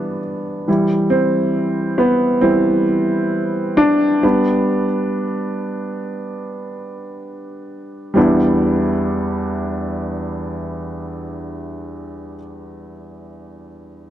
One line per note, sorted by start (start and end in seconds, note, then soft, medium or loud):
0.00 0.68 E3 soft
0.00 0.68 G3 soft
0.00 0.20 B3 medium
0.00 0.69 D4 soft
0.68 1.95 E3 soft
0.68 1.95 G3 soft
0.68 1.95 E4 soft
1.10 2.01 C4 medium
1.98 2.39 B3 medium
2.41 2.83 E3 soft
2.41 2.83 G3 soft
2.41 3.81 C4 medium
2.41 2.83 E4 soft
3.77 4.23 D4 medium
4.23 4.85 G3 soft
4.23 4.86 B3 medium
4.23 4.86 D4 soft
8.14 12.37 E2 soft
8.14 12.34 G3 soft
8.14 12.36 B3 soft
8.14 12.37 D4 soft
8.19 12.39 E4 medium